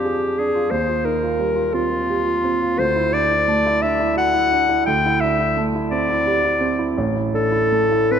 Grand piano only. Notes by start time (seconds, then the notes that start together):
Already playing: F2 C4 D4 D#4 F4
0.05 G#4
0.21 F4
0.39 D4
0.55 F4
0.71 D#2
0.88 F4
1.05 D#4
1.23 F4
1.39 G3
1.55 F4
1.73 C4
1.91 F4
2.10 G4
2.26 F4
2.44 C4
2.61 F4
2.79 D2
2.96 E4
3.13 D4
3.31 E4
3.48 A3
3.66 E4
3.83 D4
4.00 E4
4.16 F#4
4.34 E4
4.52 D4
4.69 E4
4.87 D2
5.06 E4
5.23 D4
5.39 E4
5.57 A3
5.75 E4
5.92 C4
6.09 E4
6.26 G4
6.43 E4
6.61 C4
6.79 E4
6.98 A1
7.16 E4
7.33 D4
7.52 E4
7.72 A3
7.91 E4
8.11 C4